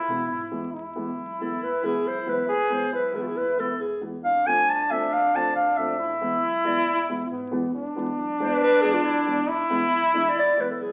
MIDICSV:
0, 0, Header, 1, 5, 480
1, 0, Start_track
1, 0, Tempo, 436999
1, 823, Time_signature, 2, 2, 24, 8
1, 11996, End_track
2, 0, Start_track
2, 0, Title_t, "Clarinet"
2, 0, Program_c, 0, 71
2, 0, Note_on_c, 0, 64, 96
2, 586, Note_off_c, 0, 64, 0
2, 1547, Note_on_c, 0, 69, 81
2, 1796, Note_on_c, 0, 71, 106
2, 1812, Note_off_c, 0, 69, 0
2, 2033, Note_on_c, 0, 68, 97
2, 2049, Note_off_c, 0, 71, 0
2, 2278, Note_on_c, 0, 72, 115
2, 2294, Note_off_c, 0, 68, 0
2, 2517, Note_on_c, 0, 71, 91
2, 2534, Note_off_c, 0, 72, 0
2, 3005, Note_on_c, 0, 72, 96
2, 3021, Note_off_c, 0, 71, 0
2, 3231, Note_off_c, 0, 72, 0
2, 3238, Note_on_c, 0, 71, 90
2, 3467, Note_on_c, 0, 68, 64
2, 3484, Note_off_c, 0, 71, 0
2, 3540, Note_on_c, 0, 65, 58
2, 3556, Note_off_c, 0, 68, 0
2, 3598, Note_on_c, 0, 68, 78
2, 3615, Note_off_c, 0, 65, 0
2, 3702, Note_on_c, 0, 71, 103
2, 3719, Note_off_c, 0, 68, 0
2, 3945, Note_on_c, 0, 69, 89
2, 3961, Note_off_c, 0, 71, 0
2, 4183, Note_on_c, 0, 68, 78
2, 4199, Note_off_c, 0, 69, 0
2, 4424, Note_off_c, 0, 68, 0
2, 4662, Note_on_c, 0, 77, 100
2, 4909, Note_on_c, 0, 80, 114
2, 4925, Note_off_c, 0, 77, 0
2, 5156, Note_on_c, 0, 81, 103
2, 5172, Note_off_c, 0, 80, 0
2, 5393, Note_on_c, 0, 76, 94
2, 5410, Note_off_c, 0, 81, 0
2, 5632, Note_on_c, 0, 77, 121
2, 5648, Note_off_c, 0, 76, 0
2, 5885, Note_on_c, 0, 81, 105
2, 5901, Note_off_c, 0, 77, 0
2, 6098, Note_off_c, 0, 81, 0
2, 6105, Note_on_c, 0, 77, 93
2, 6335, Note_on_c, 0, 76, 89
2, 6352, Note_off_c, 0, 77, 0
2, 7320, Note_on_c, 0, 74, 66
2, 7337, Note_off_c, 0, 76, 0
2, 7794, Note_off_c, 0, 74, 0
2, 9245, Note_on_c, 0, 72, 85
2, 9363, Note_on_c, 0, 71, 98
2, 9379, Note_off_c, 0, 72, 0
2, 9471, Note_off_c, 0, 71, 0
2, 9478, Note_on_c, 0, 71, 127
2, 9682, Note_on_c, 0, 68, 114
2, 9698, Note_off_c, 0, 71, 0
2, 9815, Note_on_c, 0, 65, 96
2, 9832, Note_off_c, 0, 68, 0
2, 9940, Note_on_c, 0, 64, 81
2, 9956, Note_off_c, 0, 65, 0
2, 10303, Note_off_c, 0, 64, 0
2, 11174, Note_on_c, 0, 76, 82
2, 11297, Note_on_c, 0, 74, 89
2, 11314, Note_off_c, 0, 76, 0
2, 11401, Note_off_c, 0, 74, 0
2, 11416, Note_on_c, 0, 74, 127
2, 11657, Note_on_c, 0, 71, 94
2, 11674, Note_off_c, 0, 74, 0
2, 11752, Note_off_c, 0, 71, 0
2, 11759, Note_on_c, 0, 69, 78
2, 11883, Note_on_c, 0, 68, 79
2, 11900, Note_off_c, 0, 69, 0
2, 11996, Note_off_c, 0, 68, 0
2, 11996, End_track
3, 0, Start_track
3, 0, Title_t, "Trombone"
3, 0, Program_c, 1, 57
3, 0, Note_on_c, 1, 64, 106
3, 321, Note_off_c, 1, 64, 0
3, 328, Note_on_c, 1, 64, 82
3, 781, Note_off_c, 1, 64, 0
3, 804, Note_on_c, 1, 64, 86
3, 2690, Note_off_c, 1, 64, 0
3, 2732, Note_on_c, 1, 68, 116
3, 3184, Note_off_c, 1, 68, 0
3, 3221, Note_on_c, 1, 64, 84
3, 4381, Note_off_c, 1, 64, 0
3, 4658, Note_on_c, 1, 62, 91
3, 6540, Note_off_c, 1, 62, 0
3, 6586, Note_on_c, 1, 64, 118
3, 7984, Note_off_c, 1, 64, 0
3, 8030, Note_on_c, 1, 59, 73
3, 8476, Note_off_c, 1, 59, 0
3, 8512, Note_on_c, 1, 62, 121
3, 10421, Note_on_c, 1, 64, 127
3, 10438, Note_off_c, 1, 62, 0
3, 11996, Note_off_c, 1, 64, 0
3, 11996, End_track
4, 0, Start_track
4, 0, Title_t, "Upright piano"
4, 0, Program_c, 2, 0
4, 104, Note_on_c, 2, 56, 49
4, 105, Note_on_c, 2, 52, 61
4, 109, Note_on_c, 2, 59, 73
4, 224, Note_off_c, 2, 52, 0
4, 224, Note_off_c, 2, 56, 0
4, 226, Note_off_c, 2, 59, 0
4, 565, Note_on_c, 2, 52, 72
4, 566, Note_on_c, 2, 56, 64
4, 568, Note_on_c, 2, 59, 65
4, 694, Note_off_c, 2, 52, 0
4, 695, Note_off_c, 2, 56, 0
4, 696, Note_off_c, 2, 59, 0
4, 1049, Note_on_c, 2, 52, 70
4, 1052, Note_on_c, 2, 59, 72
4, 1059, Note_on_c, 2, 56, 63
4, 1176, Note_off_c, 2, 52, 0
4, 1178, Note_off_c, 2, 59, 0
4, 1181, Note_off_c, 2, 56, 0
4, 1547, Note_on_c, 2, 52, 65
4, 1548, Note_on_c, 2, 56, 48
4, 1550, Note_on_c, 2, 59, 62
4, 1665, Note_off_c, 2, 52, 0
4, 1665, Note_off_c, 2, 56, 0
4, 1666, Note_off_c, 2, 59, 0
4, 2006, Note_on_c, 2, 52, 60
4, 2013, Note_on_c, 2, 56, 59
4, 2014, Note_on_c, 2, 59, 69
4, 2135, Note_off_c, 2, 52, 0
4, 2138, Note_off_c, 2, 56, 0
4, 2139, Note_off_c, 2, 59, 0
4, 2484, Note_on_c, 2, 52, 58
4, 2485, Note_on_c, 2, 56, 54
4, 2497, Note_on_c, 2, 59, 70
4, 2614, Note_off_c, 2, 52, 0
4, 2614, Note_off_c, 2, 56, 0
4, 2620, Note_off_c, 2, 59, 0
4, 2963, Note_on_c, 2, 56, 58
4, 2965, Note_on_c, 2, 52, 55
4, 2972, Note_on_c, 2, 59, 69
4, 3093, Note_off_c, 2, 56, 0
4, 3095, Note_off_c, 2, 52, 0
4, 3098, Note_off_c, 2, 59, 0
4, 3436, Note_on_c, 2, 52, 63
4, 3438, Note_on_c, 2, 56, 46
4, 3445, Note_on_c, 2, 59, 66
4, 3570, Note_off_c, 2, 52, 0
4, 3571, Note_off_c, 2, 56, 0
4, 3575, Note_off_c, 2, 59, 0
4, 3924, Note_on_c, 2, 52, 57
4, 3925, Note_on_c, 2, 59, 65
4, 3927, Note_on_c, 2, 56, 50
4, 4055, Note_off_c, 2, 52, 0
4, 4055, Note_off_c, 2, 59, 0
4, 4056, Note_off_c, 2, 56, 0
4, 4403, Note_on_c, 2, 56, 49
4, 4410, Note_on_c, 2, 52, 62
4, 4410, Note_on_c, 2, 59, 65
4, 4535, Note_off_c, 2, 56, 0
4, 4538, Note_off_c, 2, 52, 0
4, 4538, Note_off_c, 2, 59, 0
4, 4902, Note_on_c, 2, 57, 64
4, 4904, Note_on_c, 2, 53, 71
4, 4908, Note_on_c, 2, 60, 59
4, 5024, Note_off_c, 2, 57, 0
4, 5025, Note_off_c, 2, 53, 0
4, 5027, Note_off_c, 2, 60, 0
4, 5385, Note_on_c, 2, 57, 63
4, 5387, Note_on_c, 2, 53, 59
4, 5387, Note_on_c, 2, 60, 67
4, 5506, Note_off_c, 2, 57, 0
4, 5507, Note_off_c, 2, 53, 0
4, 5507, Note_off_c, 2, 60, 0
4, 5870, Note_on_c, 2, 53, 64
4, 5877, Note_on_c, 2, 57, 54
4, 5881, Note_on_c, 2, 60, 73
4, 5989, Note_off_c, 2, 53, 0
4, 5992, Note_off_c, 2, 57, 0
4, 5995, Note_off_c, 2, 60, 0
4, 6350, Note_on_c, 2, 53, 56
4, 6352, Note_on_c, 2, 57, 55
4, 6361, Note_on_c, 2, 60, 70
4, 6469, Note_off_c, 2, 53, 0
4, 6470, Note_off_c, 2, 57, 0
4, 6474, Note_off_c, 2, 60, 0
4, 6823, Note_on_c, 2, 52, 66
4, 6826, Note_on_c, 2, 56, 63
4, 6828, Note_on_c, 2, 59, 78
4, 6946, Note_off_c, 2, 52, 0
4, 6947, Note_off_c, 2, 56, 0
4, 6948, Note_off_c, 2, 59, 0
4, 7300, Note_on_c, 2, 56, 61
4, 7302, Note_on_c, 2, 52, 70
4, 7305, Note_on_c, 2, 59, 78
4, 7425, Note_off_c, 2, 52, 0
4, 7425, Note_off_c, 2, 56, 0
4, 7427, Note_off_c, 2, 59, 0
4, 7790, Note_on_c, 2, 56, 65
4, 7791, Note_on_c, 2, 52, 65
4, 7792, Note_on_c, 2, 59, 71
4, 7909, Note_off_c, 2, 56, 0
4, 7910, Note_off_c, 2, 52, 0
4, 7910, Note_off_c, 2, 59, 0
4, 8253, Note_on_c, 2, 52, 84
4, 8258, Note_on_c, 2, 56, 74
4, 8258, Note_on_c, 2, 59, 85
4, 8381, Note_off_c, 2, 52, 0
4, 8383, Note_off_c, 2, 56, 0
4, 8383, Note_off_c, 2, 59, 0
4, 8740, Note_on_c, 2, 52, 80
4, 8752, Note_on_c, 2, 56, 67
4, 8752, Note_on_c, 2, 59, 82
4, 8864, Note_off_c, 2, 52, 0
4, 8870, Note_off_c, 2, 56, 0
4, 8870, Note_off_c, 2, 59, 0
4, 9221, Note_on_c, 2, 52, 60
4, 9223, Note_on_c, 2, 56, 65
4, 9231, Note_on_c, 2, 59, 73
4, 9344, Note_off_c, 2, 52, 0
4, 9345, Note_off_c, 2, 56, 0
4, 9349, Note_off_c, 2, 59, 0
4, 9701, Note_on_c, 2, 52, 69
4, 9705, Note_on_c, 2, 56, 62
4, 9705, Note_on_c, 2, 59, 75
4, 9824, Note_off_c, 2, 52, 0
4, 9826, Note_off_c, 2, 56, 0
4, 9827, Note_off_c, 2, 59, 0
4, 10173, Note_on_c, 2, 52, 58
4, 10175, Note_on_c, 2, 56, 55
4, 10175, Note_on_c, 2, 59, 71
4, 10300, Note_off_c, 2, 52, 0
4, 10301, Note_off_c, 2, 56, 0
4, 10301, Note_off_c, 2, 59, 0
4, 10651, Note_on_c, 2, 52, 71
4, 10656, Note_on_c, 2, 59, 91
4, 10660, Note_on_c, 2, 56, 78
4, 10779, Note_off_c, 2, 52, 0
4, 10781, Note_off_c, 2, 59, 0
4, 10783, Note_off_c, 2, 56, 0
4, 11138, Note_on_c, 2, 52, 65
4, 11142, Note_on_c, 2, 62, 78
4, 11143, Note_on_c, 2, 56, 57
4, 11261, Note_off_c, 2, 52, 0
4, 11263, Note_off_c, 2, 62, 0
4, 11264, Note_off_c, 2, 56, 0
4, 11609, Note_on_c, 2, 52, 63
4, 11615, Note_on_c, 2, 59, 75
4, 11616, Note_on_c, 2, 56, 56
4, 11737, Note_off_c, 2, 52, 0
4, 11739, Note_off_c, 2, 59, 0
4, 11740, Note_off_c, 2, 56, 0
4, 11996, End_track
5, 0, Start_track
5, 0, Title_t, "Sub bass"
5, 0, Program_c, 3, 38
5, 89, Note_on_c, 3, 47, 78
5, 311, Note_off_c, 3, 47, 0
5, 332, Note_on_c, 3, 44, 84
5, 553, Note_off_c, 3, 44, 0
5, 574, Note_on_c, 3, 40, 89
5, 794, Note_off_c, 3, 40, 0
5, 811, Note_on_c, 3, 40, 105
5, 1103, Note_off_c, 3, 40, 0
5, 1291, Note_on_c, 3, 35, 115
5, 1772, Note_on_c, 3, 40, 110
5, 1788, Note_off_c, 3, 35, 0
5, 2063, Note_off_c, 3, 40, 0
5, 2252, Note_on_c, 3, 35, 97
5, 2748, Note_on_c, 3, 40, 89
5, 2764, Note_off_c, 3, 35, 0
5, 3035, Note_off_c, 3, 40, 0
5, 3226, Note_on_c, 3, 35, 96
5, 3697, Note_on_c, 3, 40, 106
5, 3714, Note_off_c, 3, 35, 0
5, 3988, Note_off_c, 3, 40, 0
5, 4183, Note_on_c, 3, 40, 104
5, 4659, Note_on_c, 3, 41, 107
5, 4675, Note_off_c, 3, 40, 0
5, 4950, Note_off_c, 3, 41, 0
5, 5143, Note_on_c, 3, 36, 109
5, 5619, Note_on_c, 3, 41, 97
5, 5636, Note_off_c, 3, 36, 0
5, 5910, Note_off_c, 3, 41, 0
5, 6100, Note_on_c, 3, 41, 110
5, 6580, Note_on_c, 3, 40, 116
5, 6597, Note_off_c, 3, 41, 0
5, 6871, Note_off_c, 3, 40, 0
5, 7059, Note_on_c, 3, 35, 117
5, 7535, Note_on_c, 3, 40, 119
5, 7552, Note_off_c, 3, 35, 0
5, 7828, Note_off_c, 3, 40, 0
5, 8028, Note_on_c, 3, 44, 85
5, 8244, Note_off_c, 3, 44, 0
5, 8261, Note_on_c, 3, 40, 88
5, 8480, Note_off_c, 3, 40, 0
5, 8503, Note_on_c, 3, 40, 81
5, 8648, Note_off_c, 3, 40, 0
5, 8976, Note_on_c, 3, 35, 95
5, 9267, Note_off_c, 3, 35, 0
5, 9464, Note_on_c, 3, 40, 93
5, 9609, Note_off_c, 3, 40, 0
5, 9949, Note_on_c, 3, 35, 98
5, 10236, Note_off_c, 3, 35, 0
5, 10423, Note_on_c, 3, 40, 108
5, 10568, Note_off_c, 3, 40, 0
5, 10902, Note_on_c, 3, 35, 97
5, 11190, Note_off_c, 3, 35, 0
5, 11378, Note_on_c, 3, 40, 98
5, 11524, Note_off_c, 3, 40, 0
5, 11857, Note_on_c, 3, 35, 106
5, 11996, Note_off_c, 3, 35, 0
5, 11996, End_track
0, 0, End_of_file